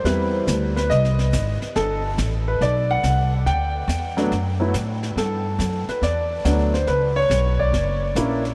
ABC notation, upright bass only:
X:1
M:4/4
L:1/8
Q:"Swing" 1/4=140
K:G
V:1 name="Upright bass" clef=bass
E,,2 D,,2 C,,2 _A,,, z | G,,,2 A,,,2 B,,,2 C,,2 | D,,2 E,,2 F,,2 A,,2 | G,,2 F,, z E,,2 D,,2 |
^C,,2 B,,,2 F,,,2 ^A,,,2 |]